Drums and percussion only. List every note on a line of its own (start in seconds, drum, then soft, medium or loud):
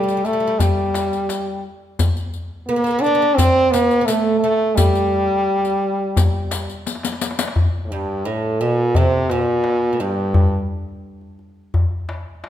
0.08 riq soft
0.08 darbuka ka soft
0.25 riq soft
0.25 darbuka ka soft
0.60 riq medium
0.60 darbuka dum medium
0.94 riq soft
0.94 darbuka tek medium
1.13 riq soft
1.29 riq soft
1.29 darbuka tek medium
1.64 darbuka ka soft
1.99 riq medium
1.99 darbuka dum medium
2.16 riq soft
2.16 darbuka ka soft
2.34 riq soft
2.86 riq soft
3.04 riq soft
3.04 darbuka ka soft
3.38 riq medium
3.38 darbuka dum medium
3.74 riq soft
3.74 darbuka tek medium
3.91 riq soft
4.08 riq soft
4.08 darbuka tek medium
4.44 darbuka ka soft
4.77 riq medium
4.77 darbuka dum medium
4.95 riq soft
4.95 darbuka ka soft
5.12 darbuka ka soft
5.65 riq soft
5.65 darbuka ka soft
6.17 riq medium
6.17 darbuka dum medium
6.51 riq medium
6.51 darbuka tek medium
6.69 riq soft
6.69 darbuka ka soft
6.86 riq soft
6.86 darbuka tek medium
6.95 darbuka ka medium
7.03 riq medium
7.03 darbuka tek medium
7.12 darbuka ka medium
7.21 riq medium
7.21 darbuka tek medium
7.31 darbuka ka medium
7.39 riq medium
7.39 darbuka tek medium
7.48 darbuka ka medium
7.56 darbuka dum medium
7.73 darbuka ka soft
8.43 darbuka ka soft
8.60 darbuka ka soft
8.95 darbuka dum medium
9.30 darbuka tek medium
9.64 darbuka tek medium
9.99 darbuka ka soft
10.34 darbuka dum medium
10.52 darbuka ka soft
11.21 darbuka ka soft
11.39 darbuka ka soft
11.74 darbuka dum medium
12.09 darbuka tek medium
12.44 darbuka tek medium